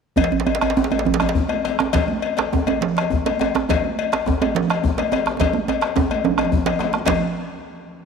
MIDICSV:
0, 0, Header, 1, 4, 480
1, 0, Start_track
1, 0, Tempo, 292255
1, 279, Time_signature, 12, 3, 24, 8
1, 7475, Tempo, 282220
1, 10355, Tempo, 274098
1, 13518, End_track
2, 0, Start_track
2, 0, Title_t, "Bombo"
2, 263, Note_on_c, 9, 43, 76
2, 428, Note_off_c, 9, 43, 0
2, 1008, Note_on_c, 9, 37, 66
2, 1173, Note_off_c, 9, 37, 0
2, 1243, Note_on_c, 9, 37, 27
2, 1407, Note_off_c, 9, 37, 0
2, 1967, Note_on_c, 9, 37, 65
2, 2132, Note_off_c, 9, 37, 0
2, 2219, Note_on_c, 9, 43, 85
2, 2383, Note_off_c, 9, 43, 0
2, 2464, Note_on_c, 9, 37, 27
2, 2628, Note_off_c, 9, 37, 0
2, 2701, Note_on_c, 9, 37, 29
2, 2866, Note_off_c, 9, 37, 0
2, 2937, Note_on_c, 9, 37, 70
2, 3101, Note_off_c, 9, 37, 0
2, 3191, Note_on_c, 9, 43, 86
2, 3356, Note_off_c, 9, 43, 0
2, 3926, Note_on_c, 9, 37, 61
2, 4090, Note_off_c, 9, 37, 0
2, 4164, Note_on_c, 9, 37, 26
2, 4164, Note_on_c, 9, 43, 83
2, 4329, Note_off_c, 9, 37, 0
2, 4329, Note_off_c, 9, 43, 0
2, 4894, Note_on_c, 9, 37, 66
2, 5058, Note_off_c, 9, 37, 0
2, 5135, Note_on_c, 9, 43, 83
2, 5299, Note_off_c, 9, 43, 0
2, 5378, Note_on_c, 9, 37, 27
2, 5542, Note_off_c, 9, 37, 0
2, 5624, Note_on_c, 9, 37, 30
2, 5788, Note_off_c, 9, 37, 0
2, 5847, Note_on_c, 9, 37, 61
2, 6011, Note_off_c, 9, 37, 0
2, 6084, Note_on_c, 9, 43, 81
2, 6248, Note_off_c, 9, 43, 0
2, 6784, Note_on_c, 9, 37, 65
2, 6949, Note_off_c, 9, 37, 0
2, 7037, Note_on_c, 9, 37, 27
2, 7037, Note_on_c, 9, 43, 83
2, 7201, Note_off_c, 9, 37, 0
2, 7201, Note_off_c, 9, 43, 0
2, 7734, Note_on_c, 9, 37, 64
2, 7905, Note_off_c, 9, 37, 0
2, 7972, Note_on_c, 9, 43, 84
2, 8142, Note_off_c, 9, 43, 0
2, 8227, Note_on_c, 9, 37, 28
2, 8397, Note_off_c, 9, 37, 0
2, 8462, Note_on_c, 9, 37, 30
2, 8632, Note_off_c, 9, 37, 0
2, 8698, Note_on_c, 9, 37, 71
2, 8868, Note_off_c, 9, 37, 0
2, 8923, Note_on_c, 9, 43, 78
2, 9093, Note_off_c, 9, 43, 0
2, 9164, Note_on_c, 9, 37, 27
2, 9334, Note_off_c, 9, 37, 0
2, 9414, Note_on_c, 9, 37, 29
2, 9585, Note_off_c, 9, 37, 0
2, 9639, Note_on_c, 9, 37, 67
2, 9809, Note_off_c, 9, 37, 0
2, 9881, Note_on_c, 9, 37, 28
2, 9881, Note_on_c, 9, 43, 83
2, 10051, Note_off_c, 9, 37, 0
2, 10051, Note_off_c, 9, 43, 0
2, 10123, Note_on_c, 9, 37, 29
2, 10293, Note_off_c, 9, 37, 0
2, 10361, Note_on_c, 9, 37, 27
2, 10536, Note_off_c, 9, 37, 0
2, 10588, Note_on_c, 9, 37, 73
2, 10763, Note_off_c, 9, 37, 0
2, 10844, Note_on_c, 9, 43, 90
2, 11019, Note_off_c, 9, 43, 0
2, 11332, Note_on_c, 9, 37, 30
2, 11507, Note_off_c, 9, 37, 0
2, 11568, Note_on_c, 9, 37, 66
2, 11743, Note_off_c, 9, 37, 0
2, 11809, Note_on_c, 9, 43, 67
2, 11984, Note_off_c, 9, 43, 0
2, 13518, End_track
3, 0, Start_track
3, 0, Title_t, "Djembe"
3, 272, Note_on_c, 9, 64, 67
3, 279, Note_off_c, 9, 64, 0
3, 279, Note_on_c, 9, 64, 97
3, 392, Note_on_c, 9, 62, 74
3, 443, Note_off_c, 9, 64, 0
3, 526, Note_on_c, 9, 64, 75
3, 557, Note_off_c, 9, 62, 0
3, 652, Note_on_c, 9, 62, 71
3, 690, Note_off_c, 9, 64, 0
3, 765, Note_on_c, 9, 64, 91
3, 817, Note_off_c, 9, 62, 0
3, 899, Note_on_c, 9, 62, 74
3, 929, Note_off_c, 9, 64, 0
3, 1011, Note_off_c, 9, 62, 0
3, 1011, Note_on_c, 9, 62, 54
3, 1024, Note_on_c, 9, 64, 70
3, 1150, Note_off_c, 9, 62, 0
3, 1150, Note_on_c, 9, 62, 68
3, 1189, Note_off_c, 9, 64, 0
3, 1261, Note_on_c, 9, 63, 66
3, 1261, Note_on_c, 9, 64, 61
3, 1267, Note_off_c, 9, 64, 0
3, 1267, Note_on_c, 9, 64, 97
3, 1314, Note_off_c, 9, 62, 0
3, 1383, Note_on_c, 9, 62, 65
3, 1425, Note_off_c, 9, 63, 0
3, 1432, Note_off_c, 9, 64, 0
3, 1495, Note_off_c, 9, 62, 0
3, 1495, Note_on_c, 9, 62, 23
3, 1506, Note_on_c, 9, 64, 71
3, 1628, Note_off_c, 9, 62, 0
3, 1628, Note_on_c, 9, 62, 73
3, 1670, Note_off_c, 9, 64, 0
3, 1747, Note_on_c, 9, 64, 91
3, 1792, Note_off_c, 9, 62, 0
3, 1869, Note_on_c, 9, 62, 81
3, 1911, Note_off_c, 9, 64, 0
3, 1979, Note_off_c, 9, 62, 0
3, 1979, Note_on_c, 9, 62, 53
3, 2001, Note_on_c, 9, 64, 70
3, 2116, Note_off_c, 9, 62, 0
3, 2116, Note_on_c, 9, 62, 68
3, 2165, Note_off_c, 9, 64, 0
3, 2218, Note_on_c, 9, 64, 64
3, 2280, Note_off_c, 9, 62, 0
3, 2382, Note_off_c, 9, 64, 0
3, 2710, Note_on_c, 9, 63, 64
3, 2875, Note_off_c, 9, 63, 0
3, 2953, Note_on_c, 9, 62, 59
3, 2958, Note_on_c, 9, 63, 89
3, 3117, Note_off_c, 9, 62, 0
3, 3123, Note_off_c, 9, 63, 0
3, 3177, Note_on_c, 9, 64, 67
3, 3185, Note_on_c, 9, 62, 75
3, 3341, Note_off_c, 9, 64, 0
3, 3350, Note_off_c, 9, 62, 0
3, 3890, Note_on_c, 9, 62, 51
3, 3917, Note_off_c, 9, 62, 0
3, 3917, Note_on_c, 9, 62, 74
3, 4082, Note_off_c, 9, 62, 0
3, 4149, Note_on_c, 9, 63, 57
3, 4149, Note_on_c, 9, 64, 61
3, 4158, Note_off_c, 9, 63, 0
3, 4158, Note_on_c, 9, 63, 74
3, 4313, Note_off_c, 9, 64, 0
3, 4323, Note_off_c, 9, 63, 0
3, 4399, Note_on_c, 9, 62, 22
3, 4399, Note_on_c, 9, 63, 88
3, 4563, Note_off_c, 9, 62, 0
3, 4563, Note_off_c, 9, 63, 0
3, 4631, Note_on_c, 9, 62, 75
3, 4795, Note_off_c, 9, 62, 0
3, 4873, Note_on_c, 9, 62, 55
3, 5037, Note_off_c, 9, 62, 0
3, 5097, Note_on_c, 9, 64, 63
3, 5261, Note_off_c, 9, 64, 0
3, 5357, Note_on_c, 9, 62, 70
3, 5521, Note_off_c, 9, 62, 0
3, 5575, Note_on_c, 9, 63, 69
3, 5607, Note_off_c, 9, 63, 0
3, 5607, Note_on_c, 9, 63, 79
3, 5771, Note_off_c, 9, 63, 0
3, 5827, Note_on_c, 9, 62, 50
3, 5834, Note_on_c, 9, 63, 95
3, 5991, Note_off_c, 9, 62, 0
3, 5998, Note_off_c, 9, 63, 0
3, 6059, Note_on_c, 9, 64, 65
3, 6077, Note_on_c, 9, 62, 71
3, 6223, Note_off_c, 9, 64, 0
3, 6241, Note_off_c, 9, 62, 0
3, 6769, Note_on_c, 9, 62, 50
3, 6787, Note_off_c, 9, 62, 0
3, 6787, Note_on_c, 9, 62, 67
3, 6952, Note_off_c, 9, 62, 0
3, 7002, Note_on_c, 9, 63, 64
3, 7002, Note_on_c, 9, 64, 60
3, 7022, Note_off_c, 9, 63, 0
3, 7022, Note_on_c, 9, 63, 70
3, 7166, Note_off_c, 9, 64, 0
3, 7187, Note_off_c, 9, 63, 0
3, 7254, Note_on_c, 9, 63, 94
3, 7255, Note_on_c, 9, 62, 23
3, 7418, Note_off_c, 9, 63, 0
3, 7420, Note_off_c, 9, 62, 0
3, 7491, Note_on_c, 9, 62, 76
3, 7661, Note_off_c, 9, 62, 0
3, 7725, Note_on_c, 9, 62, 52
3, 7895, Note_off_c, 9, 62, 0
3, 7959, Note_on_c, 9, 64, 75
3, 8129, Note_off_c, 9, 64, 0
3, 8205, Note_on_c, 9, 62, 67
3, 8375, Note_off_c, 9, 62, 0
3, 8436, Note_on_c, 9, 63, 69
3, 8444, Note_off_c, 9, 63, 0
3, 8444, Note_on_c, 9, 63, 78
3, 8614, Note_off_c, 9, 63, 0
3, 8677, Note_on_c, 9, 62, 58
3, 8847, Note_off_c, 9, 62, 0
3, 8918, Note_on_c, 9, 63, 91
3, 8921, Note_on_c, 9, 62, 21
3, 8921, Note_on_c, 9, 64, 70
3, 9088, Note_off_c, 9, 63, 0
3, 9091, Note_off_c, 9, 62, 0
3, 9091, Note_off_c, 9, 64, 0
3, 9146, Note_on_c, 9, 62, 23
3, 9316, Note_off_c, 9, 62, 0
3, 9393, Note_on_c, 9, 62, 24
3, 9400, Note_on_c, 9, 63, 86
3, 9563, Note_off_c, 9, 62, 0
3, 9570, Note_off_c, 9, 63, 0
3, 9623, Note_on_c, 9, 62, 57
3, 9793, Note_off_c, 9, 62, 0
3, 9865, Note_on_c, 9, 63, 66
3, 9865, Note_on_c, 9, 64, 68
3, 9877, Note_off_c, 9, 63, 0
3, 9877, Note_on_c, 9, 63, 101
3, 10035, Note_off_c, 9, 64, 0
3, 10047, Note_off_c, 9, 63, 0
3, 10121, Note_on_c, 9, 62, 24
3, 10291, Note_off_c, 9, 62, 0
3, 10360, Note_on_c, 9, 63, 87
3, 10362, Note_on_c, 9, 62, 24
3, 10535, Note_off_c, 9, 63, 0
3, 10537, Note_off_c, 9, 62, 0
3, 10592, Note_on_c, 9, 63, 93
3, 10610, Note_on_c, 9, 62, 54
3, 10767, Note_off_c, 9, 63, 0
3, 10785, Note_off_c, 9, 62, 0
3, 10838, Note_on_c, 9, 64, 70
3, 11013, Note_off_c, 9, 64, 0
3, 11083, Note_on_c, 9, 62, 85
3, 11258, Note_off_c, 9, 62, 0
3, 11311, Note_on_c, 9, 62, 21
3, 11311, Note_on_c, 9, 63, 71
3, 11486, Note_off_c, 9, 62, 0
3, 11486, Note_off_c, 9, 63, 0
3, 11552, Note_on_c, 9, 62, 52
3, 11727, Note_off_c, 9, 62, 0
3, 11785, Note_on_c, 9, 64, 67
3, 11810, Note_on_c, 9, 62, 102
3, 11960, Note_off_c, 9, 64, 0
3, 11985, Note_off_c, 9, 62, 0
3, 13518, End_track
4, 0, Start_track
4, 0, Title_t, "Drums"
4, 263, Note_on_c, 9, 63, 21
4, 263, Note_on_c, 9, 64, 61
4, 286, Note_on_c, 9, 56, 61
4, 427, Note_off_c, 9, 63, 0
4, 427, Note_off_c, 9, 64, 0
4, 450, Note_off_c, 9, 56, 0
4, 762, Note_on_c, 9, 56, 47
4, 927, Note_off_c, 9, 56, 0
4, 1019, Note_on_c, 9, 56, 43
4, 1183, Note_off_c, 9, 56, 0
4, 1489, Note_on_c, 9, 63, 53
4, 1503, Note_on_c, 9, 56, 46
4, 1653, Note_off_c, 9, 63, 0
4, 1667, Note_off_c, 9, 56, 0
4, 1728, Note_on_c, 9, 63, 22
4, 1728, Note_on_c, 9, 64, 67
4, 1892, Note_off_c, 9, 63, 0
4, 1892, Note_off_c, 9, 64, 0
4, 1968, Note_on_c, 9, 56, 47
4, 2133, Note_off_c, 9, 56, 0
4, 2438, Note_on_c, 9, 63, 48
4, 2451, Note_on_c, 9, 56, 44
4, 2602, Note_off_c, 9, 63, 0
4, 2615, Note_off_c, 9, 56, 0
4, 2708, Note_on_c, 9, 56, 49
4, 2873, Note_off_c, 9, 56, 0
4, 3170, Note_on_c, 9, 56, 59
4, 3178, Note_on_c, 9, 63, 21
4, 3178, Note_on_c, 9, 64, 68
4, 3334, Note_off_c, 9, 56, 0
4, 3342, Note_off_c, 9, 63, 0
4, 3342, Note_off_c, 9, 64, 0
4, 3415, Note_on_c, 9, 63, 57
4, 3580, Note_off_c, 9, 63, 0
4, 3652, Note_on_c, 9, 56, 44
4, 3817, Note_off_c, 9, 56, 0
4, 3902, Note_on_c, 9, 56, 42
4, 4067, Note_off_c, 9, 56, 0
4, 4377, Note_on_c, 9, 63, 53
4, 4385, Note_on_c, 9, 56, 44
4, 4541, Note_off_c, 9, 63, 0
4, 4549, Note_off_c, 9, 56, 0
4, 4615, Note_on_c, 9, 63, 22
4, 4615, Note_on_c, 9, 64, 69
4, 4779, Note_off_c, 9, 63, 0
4, 4779, Note_off_c, 9, 64, 0
4, 4892, Note_on_c, 9, 56, 46
4, 5056, Note_off_c, 9, 56, 0
4, 5114, Note_on_c, 9, 63, 21
4, 5278, Note_off_c, 9, 63, 0
4, 5354, Note_on_c, 9, 63, 54
4, 5359, Note_on_c, 9, 56, 45
4, 5518, Note_off_c, 9, 63, 0
4, 5524, Note_off_c, 9, 56, 0
4, 5599, Note_on_c, 9, 56, 49
4, 5763, Note_off_c, 9, 56, 0
4, 6066, Note_on_c, 9, 63, 20
4, 6066, Note_on_c, 9, 64, 69
4, 6085, Note_on_c, 9, 56, 59
4, 6230, Note_off_c, 9, 63, 0
4, 6230, Note_off_c, 9, 64, 0
4, 6250, Note_off_c, 9, 56, 0
4, 6308, Note_on_c, 9, 63, 51
4, 6472, Note_off_c, 9, 63, 0
4, 6549, Note_on_c, 9, 56, 46
4, 6713, Note_off_c, 9, 56, 0
4, 6779, Note_on_c, 9, 56, 41
4, 6943, Note_off_c, 9, 56, 0
4, 7247, Note_on_c, 9, 63, 57
4, 7257, Note_on_c, 9, 56, 44
4, 7411, Note_off_c, 9, 63, 0
4, 7422, Note_off_c, 9, 56, 0
4, 7472, Note_on_c, 9, 63, 23
4, 7472, Note_on_c, 9, 64, 79
4, 7642, Note_off_c, 9, 63, 0
4, 7642, Note_off_c, 9, 64, 0
4, 7741, Note_on_c, 9, 56, 42
4, 7911, Note_off_c, 9, 56, 0
4, 7959, Note_on_c, 9, 63, 24
4, 8130, Note_off_c, 9, 63, 0
4, 8190, Note_on_c, 9, 63, 59
4, 8222, Note_on_c, 9, 56, 48
4, 8360, Note_off_c, 9, 63, 0
4, 8392, Note_off_c, 9, 56, 0
4, 8458, Note_on_c, 9, 56, 50
4, 8628, Note_off_c, 9, 56, 0
4, 8911, Note_on_c, 9, 64, 79
4, 8930, Note_on_c, 9, 56, 58
4, 9081, Note_off_c, 9, 64, 0
4, 9100, Note_off_c, 9, 56, 0
4, 9145, Note_on_c, 9, 63, 56
4, 9315, Note_off_c, 9, 63, 0
4, 9414, Note_on_c, 9, 56, 46
4, 9584, Note_off_c, 9, 56, 0
4, 9634, Note_on_c, 9, 56, 43
4, 9804, Note_off_c, 9, 56, 0
4, 9876, Note_on_c, 9, 63, 22
4, 10046, Note_off_c, 9, 63, 0
4, 10124, Note_on_c, 9, 56, 47
4, 10127, Note_on_c, 9, 63, 59
4, 10294, Note_off_c, 9, 56, 0
4, 10297, Note_off_c, 9, 63, 0
4, 10351, Note_on_c, 9, 63, 25
4, 10351, Note_on_c, 9, 64, 72
4, 10526, Note_off_c, 9, 63, 0
4, 10526, Note_off_c, 9, 64, 0
4, 10576, Note_on_c, 9, 64, 39
4, 10602, Note_on_c, 9, 56, 45
4, 10752, Note_off_c, 9, 64, 0
4, 10777, Note_off_c, 9, 56, 0
4, 10828, Note_on_c, 9, 64, 44
4, 11003, Note_off_c, 9, 64, 0
4, 11071, Note_on_c, 9, 64, 46
4, 11095, Note_on_c, 9, 56, 44
4, 11246, Note_off_c, 9, 64, 0
4, 11270, Note_off_c, 9, 56, 0
4, 11321, Note_on_c, 9, 63, 55
4, 11334, Note_on_c, 9, 56, 46
4, 11496, Note_off_c, 9, 63, 0
4, 11509, Note_off_c, 9, 56, 0
4, 11576, Note_on_c, 9, 63, 59
4, 11752, Note_off_c, 9, 63, 0
4, 11790, Note_on_c, 9, 56, 67
4, 11793, Note_on_c, 9, 64, 78
4, 11965, Note_off_c, 9, 56, 0
4, 11969, Note_off_c, 9, 64, 0
4, 13518, End_track
0, 0, End_of_file